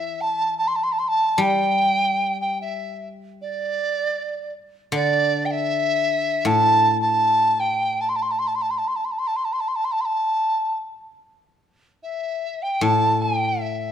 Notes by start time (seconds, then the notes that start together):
Already playing: E3 E5
0.21 A5
0.58 A5
0.67 C6
0.75 A5
0.83 C6
0.92 A5
0.99 C6
1.08 A5
1.38 G3 G5
2.41 G5
2.61 E5
3.41 D5
4.92 D3 D5
5.45 G5
5.51 E5
6.45 A2 A5
7.01 A5
7.59 G5
8.01 A5
8.09 C6
8.16 A5
8.22 C6
8.31 A5
8.39 C6
8.47 A5
8.55 C6
8.61 A5
8.70 C6
8.78 A5
8.87 C6
8.96 A5
9.04 C6
9.11 A5
9.18 C6
9.27 A5
9.36 C6
9.44 A5
9.53 C6
9.60 A5
9.68 C6
9.75 A5
9.84 C6
9.91 A5
10.00 C6
10.05 A5
12.03 E5
12.62 G5
12.81 A2 A5
13.21 G5
13.60 E5